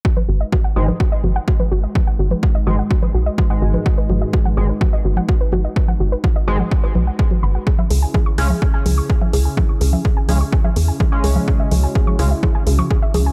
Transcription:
<<
  \new Staff \with { instrumentName = "Synth arpeggio sound" } { \time 4/4 \key gis \minor \tempo 4 = 126 fis'16 b'16 fis'16 dis''16 fis'16 fis''16 fis'16 b'16 fis'16 dis''16 fis'16 fis''16 fis'16 b'16 fis'16 dis''16 | fis'16 fis''16 fis'16 b'16 fis'16 dis''16 fis'16 fis''16 fis'16 b'16 fis'16 dis''16 fis'16 fis''16 fis'16 b'16 | fis'16 b'16 fis'16 dis''16 fis'16 fis''16 fis'16 b'16 fis'16 dis''16 fis'16 fis''16 fis'16 b'16 fis'16 dis''16 | fis'16 fis''16 fis'16 b'16 fis'16 dis''16 fis'16 fis''16 fis'16 b'16 b'16 fis''16 gis'16 fis'16 b''16 fis''16 |
gis'16 e''16 gis'16 gis''16 gis'16 cis'''16 gis'16 e''16 gis'16 gis''16 gis'16 cis'''16 gis'16 e''16 gis'16 gis''16 | gis'16 cis'''16 gis'16 e''16 gis'16 gis''16 gis'16 cis'''16 gis'16 e''16 gis'16 gis''16 gis'16 cis'''16 gis'16 e''16 | gis'16 e''16 gis'16 gis''16 gis'16 cis'''16 gis'16 e''16 gis'16 gis''16 gis'16 cis'''16 gis'16 e''16 gis'16 gis''16 | }
  \new Staff \with { instrumentName = "Analog synth pad" } { \time 4/4 \key gis \minor << { b'1~ | b'1~ | b'1~ | b'1 |
gis'1~ | gis'1 | fis'1 | } \\ { <gis dis' fis'>1~ | <gis dis' fis'>1~ | <gis dis' fis'>1~ | <gis dis' fis'>1 |
<cis cis' e'>1~ | <cis cis' e'>1~ | <cis cis' e'>1 | } >> }
  \new Staff \with { instrumentName = "Analog polysynth" } { \clef bass \time 4/4 \key gis \minor r4. <gis, dis gis>16 r2 r16 | r4. <gis, dis gis>16 r4. <gis, dis gis>8.~ | <gis, dis gis>4. <gis, dis gis>16 r2 r16 | r4. <gis, dis gis>16 r2 r16 |
r4. <cis gis cis'>16 r2 r16 | r4. <cis gis cis'>16 r4. <cis gis cis'>8.~ | <cis gis cis'>4. <cis gis cis'>16 r2 r16 | }
  \new Staff \with { instrumentName = "Analog synth bass" } { \clef bass \time 4/4 \key gis \minor r8 gis,,8 r8 gis,,8 r8 gis,,8 r8 gis,,8 | r8 gis,,8 r8 gis,,8 r8 b,,8 r8 gis,,8 | r8 gis,,8 r8 gis,,8 r8 gis,,8 r8 gis,,8 | r8 gis,,8 r8 gis,,8 r8 b,,8 r8 gis,,8 |
r8 cis,8 r8 cis,8 r8 cis,8 r8 cis,8 | r8 cis,8 r8 cis,8 r8 e,8 r8 cis,8 | r8 cis,8 r8 cis,8 r8 cis,8 r8 cis,8 | }
  \new DrumStaff \with { instrumentName = "Drums" } \drummode { \time 4/4 bd16 cgl8. <cgl bd>8. cgl16 bd8 cgl8 bd16 cgl8. | <cgl bd>8. cgl16 bd8 cgl8 bd16 cgl8. <cgl bd>8. cgl16 | bd8 cgl8 bd16 cgl8. <cgl bd>8. cgl16 bd8 cgl8 | bd16 cgl8. <cgl bd>8. cgl16 bd8 cgl8 bd16 cgl8. |
bd16 cgl16 hho8 <cgl bd>8 hho16 cgl16 bd8 <cgl hho>8 bd16 cgl16 hho8 | <cgl bd>8 hho16 cgl16 bd8 <cgl hho>8 bd16 cgl16 hho8 <cgl bd>8 hho16 cgl16 | bd8 <cgl hho>8 bd16 cgl16 hho8 <cgl bd>8 hho16 cgl16 bd8 <cgl hho>8 | }
>>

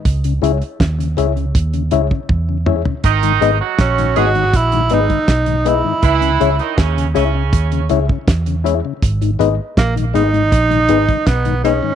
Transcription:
<<
  \new Staff \with { instrumentName = "Reed electric piano" } { \time 4/4 \key gis \minor \tempo 4 = 80 r8 <e' gis' cis'' e''>8 r8 <e' gis' cis'' e''>8 r8 <e' gis' cis'' e''>8 r8 <e' gis' cis'' e''>8 | r8 <dis' gis' b' dis''>8 r8 <dis' gis' b' dis''>8 r8 <dis' gis' b' dis''>8 r8 <dis' gis' b' dis''>8 | r8 <e' gis' cis'' e''>8 r8 <e' gis' cis'' e''>8 r8 <e' gis' cis'' e''>8 r8 <e' gis' cis'' e''>8 | r8 <dis' gis' b' dis''>8 r8 <dis' gis' b' dis''>8 r8 <dis' gis' b' dis''>8 r8 <dis' gis' b' dis''>8 | }
  \new Staff \with { instrumentName = "Tenor saxophone" } { \time 4/4 \key gis \minor r1 | r4 cis'8 fis'8 e'8 dis'4 e'8~ | e'4 r2. | r4 ais8 dis'4. b8 cis'8 | }
  \new Staff \with { instrumentName = "Horn section" } { \time 4/4 \key gis \minor r1 | <dis dis'>8. <fis fis'>8. <gis gis'>16 r2 r16 | <e e'>8. <dis dis'>16 <cis cis'>8 <cis cis'>4 r4. | r1 | }
  \new Staff \with { instrumentName = "Tonewheel organ" } { \time 4/4 \key gis \minor r8 <gis cis' e'>8 r8 <gis cis' e'>8 r8 <gis cis' e'>8 r8 <gis cis' e'>8 | r8 <gis b dis'>8 r8 <gis b dis'>8 r8 <gis b dis'>8 r8 <gis b dis'>8 | r8 <gis cis' e'>8 r8 <gis cis' e'>8 r8 <gis cis' e'>8 r8 <gis cis' e'>8 | r8 <gis b dis'>8 r8 <gis b dis'>8 r8 <gis b dis'>8 r8 <gis b dis'>8 | }
  \new Staff \with { instrumentName = "Tonewheel organ" } { \clef bass \time 4/4 \key gis \minor r16 cis16 r8. cis16 r16 cis16 r16 cis16 r16 cis16 r16 cis16 r16 cis16 | r16 <gis, dis>16 r8. <gis, dis>16 r16 <gis, dis>16 r16 <gis, dis>16 r16 <gis, dis>16 r16 <gis, dis>16 r16 <gis, dis>16 | r16 cis16 r8. cis16 r16 cis16 r16 cis16 r16 cis16 r16 cis16 r16 cis16 | r16 <gis, dis>16 r8. <gis, dis>16 r16 <gis, dis>16 r16 <gis, dis>16 r16 <gis, dis>16 r16 <gis, dis>16 r16 <gis, dis>16 | }
  \new Staff \with { instrumentName = "Fingered electric bass" } { \clef bass \time 4/4 \key gis \minor cis,8 cis,16 r16 dis,8 cis,8 dis,8 cis,16 r16 e,8. r16 | gis,,8 gis,,16 r16 ais,,8 gis,,8 ais,,8 gis,,16 r16 b,,8. r16 | cis,8 cis,16 r16 dis,8 cis,8 dis,8 cis,16 r16 e,8. r16 | gis,,8 gis,,16 r16 ais,,8 gis,,8 ais,,8 gis,,16 r16 b,,8. r16 | }
  \new DrumStaff \with { instrumentName = "Drums" } \drummode { \time 4/4 <hh bd>16 hh16 hh16 hh16 <hh bd sn>16 hh16 hh16 hh16 <hh bd>16 hh16 hh16 bd16 <bd tommh>8 toml16 tomfh16 | <hh bd>16 hh16 hh8 <hh bd sn>16 hh16 hh16 hh16 <hh bd>16 hh16 hh16 <hh bd>16 <hh bd sn>16 hh16 hh8 | <hh bd>16 hh16 hh16 hh16 <hh bd sn>16 hh16 hh8 <hh bd>16 hh16 hh16 bd16 <hh bd sn>16 hh16 hh8 | <hh bd>16 hh16 hh8 <hh bd sn>16 hh16 hh16 hh16 <hh bd>16 hh16 hh16 <hh bd>16 <hh bd sn>16 hh16 hh8 | }
>>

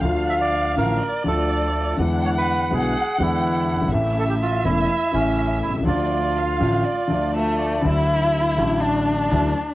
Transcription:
<<
  \new Staff \with { instrumentName = "Violin section" } { \time 4/4 \key d \minor \tempo 4 = 123 << { f''2 d''2 | fis''1 | e''1 | d''4 f''4 d''4 e''8 d''8 |
\key d \major r1 | } \\ { r1 | r1 | r1 | r2. a4 |
e'2 d'2 | } >> }
  \new Staff \with { instrumentName = "Bandoneon" } { \time 4/4 \key d \minor r8 e''16 d''8. bes'4 a'4. | r8 cis''16 b'8. gis'4 e'4. | r8 a'16 g'16 f'8 e'4 cis'4 e'8 | f'2. r4 |
\key d \major r1 | }
  \new Staff \with { instrumentName = "String section" } { \time 4/4 \key d \minor <a d' f'>4. <a d' f'>8 r8 <a d' f'>4. | <gis d' e'>4. <gis d' e'>8 r8 <gis d' e'>4. | <a cis' e'>4. <a cis' e'>8 r8 <a cis' e'>4. | <a d' f'>4. <a d' f'>8 r8 <a d' f'>4. |
\key d \major r1 | }
  \new Staff \with { instrumentName = "Grand piano" } { \clef bass \time 4/4 \key d \minor << { <d, d f a f'>4. <a,, a, d f a f'>8 r8 <d, d f a f'>4. | <e, d e gis b e'>4. <b,, b, d gis b e'>8 r8 <e, d e gis b e'>4. | <a,, a, cis e a e'>4. <e,, e, cis e a e'>8 r8 <a,, a, cis e a e'>4. | <d, d f a f'>4. <a,, a, d f a f'>8 r8 <d, d f a f'>4. |
\key d \major <d, d fis a e'>4. <a,, a, d fis a e'>4. <d, d fis a e'>8 r8 | } \\ { r1 | r2. r8 r32 fis,,32 g,,32 gis,,32 | r2. r8 r32 b,,32 c,32 cis,32 | r1 |
r1 | } >> }
  \new Staff \with { instrumentName = "Upright bass" } { \clef bass \time 4/4 \key d \minor d,4~ d,16. r32 a,,16. r8 r32 d,4~ d,16. r32 | e,4~ e,16. r32 b,,16. r8 r32 e,4~ e,32 fis,,32 g,,32 gis,,32 | a,,4~ a,,16. r32 e,,16. r8 r32 a,,4~ a,,32 b,,32 c,32 cis,32 | d,4~ d,16. r32 a,,16. r2 r32 |
\key d \major d,4~ d,16. r32 a,,4~ a,,16. r32 d,16. r8 r32 | }
>>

